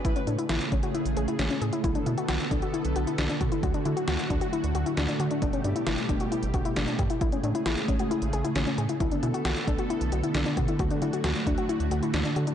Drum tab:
HH |xxxxxxxxxxxxxxxx|xxxxxxxxxxxxxxxx|xxxxxxxxxxxxxxxx|xxxxxxxxxxxxxxxx|
SD |----o-------o---|----o-------o---|----o-------o---|----o-------o---|
BD |o-----o---------|o-----o-------o-|o-----o---------|o-----o---o---o-|

HH |xxxxxxxxxxxxxxxx|xxxxxxxxxxxxxxxx|xxxxxxxxxxxxxxxx|
SD |----o-------o---|----o-------o---|----o-------o---|
BD |o-----o---------|o-----o-------o-|o-----o---------|